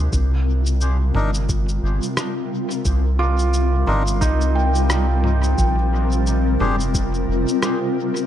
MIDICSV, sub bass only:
0, 0, Header, 1, 2, 480
1, 0, Start_track
1, 0, Key_signature, -3, "minor"
1, 0, Tempo, 681818
1, 88, Time_signature, 4, 2, 24, 8
1, 5819, End_track
2, 0, Start_track
2, 0, Title_t, "Sub bass"
2, 0, Program_c, 0, 38
2, 89, Note_on_c, 0, 36, 98
2, 789, Note_off_c, 0, 36, 0
2, 807, Note_on_c, 0, 31, 84
2, 1268, Note_off_c, 0, 31, 0
2, 1288, Note_on_c, 0, 31, 86
2, 1410, Note_off_c, 0, 31, 0
2, 2008, Note_on_c, 0, 36, 99
2, 2708, Note_off_c, 0, 36, 0
2, 2726, Note_on_c, 0, 31, 85
2, 2968, Note_on_c, 0, 36, 92
2, 2979, Note_off_c, 0, 31, 0
2, 3909, Note_off_c, 0, 36, 0
2, 3929, Note_on_c, 0, 34, 98
2, 4629, Note_off_c, 0, 34, 0
2, 4647, Note_on_c, 0, 29, 88
2, 5108, Note_off_c, 0, 29, 0
2, 5128, Note_on_c, 0, 29, 84
2, 5250, Note_off_c, 0, 29, 0
2, 5819, End_track
0, 0, End_of_file